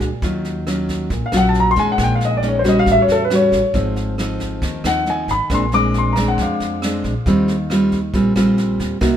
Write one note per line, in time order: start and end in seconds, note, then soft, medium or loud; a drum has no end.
0.00 0.11 C#2 medium
0.00 0.21 A#2 medium
0.00 kick soft
0.00 snare soft
0.22 1.06 D#2 medium
0.22 1.09 D#3 medium
0.22 0.64 F#3 soft
0.22 0.64 C#4 medium
0.22 0.64 F4 medium
0.22 kick medium
0.22 snare soft
0.45 snare soft
0.67 1.11 F#3 medium
0.67 1.11 C#4 medium
0.67 1.11 F4 medium
0.67 cross-stick medium
0.67 snare soft
0.88 kick soft
0.88 snare soft
1.10 1.21 A#1 medium
1.10 1.97 A#2 soft
1.10 kick medium
1.10 snare soft
1.26 1.34 F5 medium
1.32 1.73 A#1 medium
1.32 1.73 F#3 medium
1.32 1.73 C#4 medium
1.32 1.74 F4 medium
1.32 cross-stick medium
1.32 snare soft
1.37 1.46 F#5 medium
1.49 1.57 A5 medium
1.54 snare soft
1.60 1.68 A#5 medium
1.71 1.79 C6 medium
1.76 1.87 D#2 medium
1.76 2.39 G#3 medium
1.76 2.39 C#4 soft
1.76 2.39 D#4 medium
1.76 1.89 G#5 medium
1.76 kick soft
1.76 snare soft
1.92 2.00 F#5 medium
1.98 2.82 A#1 medium
1.98 2.84 A#2 medium
1.98 kick medium
1.98 cross-stick medium
1.98 snare soft
2.03 2.12 G5 medium
2.15 2.23 F5 medium
2.21 snare soft
2.25 2.34 D#5 medium
2.37 2.45 D5 medium
2.43 2.61 G#3 medium
2.43 2.61 C#4 medium
2.43 2.62 D#4 medium
2.43 snare soft
2.48 2.56 C#5 medium
2.59 2.67 C5 medium
2.64 3.27 G3 medium
2.64 3.27 C#4 medium
2.64 3.27 F#4 medium
2.64 kick soft
2.64 cross-stick soft
2.64 snare soft
2.69 2.77 D#5 medium
2.79 2.88 F5 medium
2.86 2.97 A1 medium
2.86 3.73 A2 soft
2.86 kick medium
2.86 snare soft
2.92 3.00 E5 medium
3.02 3.11 C#5 medium
3.08 3.49 E2 medium
3.08 snare soft
3.12 3.21 A4 medium
3.24 3.33 B4 medium
3.30 3.60 G3 soft
3.30 3.60 C#4 medium
3.30 3.60 F#4 medium
3.30 cross-stick medium
3.30 snare soft
3.35 3.74 C#5 medium
3.52 3.62 A1 medium
3.52 kick soft
3.52 snare soft
3.74 4.58 G#1 medium
3.74 4.60 G#2 medium
3.74 4.15 F3 medium
3.74 4.15 C4 medium
3.74 4.15 D#4 medium
3.74 kick medium
3.74 snare soft
3.96 snare soft
4.18 4.81 F3 medium
4.18 4.81 C4 soft
4.18 4.81 D#4 medium
4.18 cross-stick soft
4.18 snare soft
4.40 kick soft
4.40 snare soft
4.62 4.72 D#2 medium
4.62 5.48 D#3 medium
4.62 kick medium
4.62 snare soft
4.84 5.25 D#2 medium
4.84 5.03 F3 medium
4.84 5.04 C4 medium
4.84 5.04 D#4 medium
4.84 5.07 F#5 medium
4.84 cross-stick medium
4.84 snare soft
5.06 5.35 F3 soft
5.06 5.35 C4 medium
5.06 5.35 D#4 medium
5.06 5.29 G#5 medium
5.06 snare soft
5.28 5.38 G#1 medium
5.28 5.51 B5 medium
5.28 kick soft
5.28 snare soft
5.50 6.34 A#1 loud
5.50 6.36 A#2 medium
5.50 5.64 G#3 medium
5.50 5.64 C4 medium
5.50 5.64 D4 medium
5.50 kick medium
5.50 cross-stick medium
5.50 snare soft
5.54 5.74 C6 medium
5.72 6.13 G#3 medium
5.72 6.13 C4 medium
5.72 6.14 D4 medium
5.72 5.95 D6 loud
5.72 snare soft
5.94 snare soft
5.98 6.11 C6 medium
6.13 6.25 A#5 medium
6.13 kick soft
6.13 cross-stick medium
6.13 snare soft
6.17 6.79 G#3 medium
6.17 6.79 C4 medium
6.17 6.79 D4 medium
6.28 6.40 F#5 medium
6.38 6.48 F2 medium
6.38 7.25 F3 medium
6.38 kick medium
6.38 snare soft
6.42 7.68 F5 medium
6.60 7.01 F2 medium
6.60 snare soft
6.82 7.12 G#3 medium
6.82 7.13 C4 medium
6.82 7.13 D4 medium
6.82 cross-stick medium
6.82 snare soft
7.04 7.14 A#1 medium
7.04 kick soft
7.04 snare soft
7.26 8.10 D#2 medium
7.26 8.12 D#3 medium
7.26 7.55 G3 medium
7.26 7.55 C4 medium
7.26 7.55 F4 medium
7.26 kick medium
7.26 snare soft
7.48 snare soft
7.70 7.99 G3 medium
7.70 7.99 C4 medium
7.70 7.99 F4 medium
7.70 cross-stick medium
7.70 snare soft
7.92 kick soft
7.92 snare soft
8.14 8.24 A#1 medium
8.14 9.00 A#2 medium
8.14 8.32 G3 medium
8.14 8.33 C4 medium
8.14 8.33 F4 medium
8.14 kick medium
8.14 snare soft
8.36 8.77 A#1 medium
8.36 8.98 G3 medium
8.36 8.99 C4 medium
8.36 8.99 F4 medium
8.36 cross-stick medium
8.36 snare soft
8.58 snare soft
8.79 8.90 D#2 medium
8.79 kick soft
8.79 snare soft
9.01 9.17 C2 loud
9.01 9.17 C3 medium
9.01 9.17 A#3 medium
9.01 9.17 D#4 medium
9.01 9.17 F#4 medium
9.01 kick medium
9.01 cross-stick medium
9.01 snare soft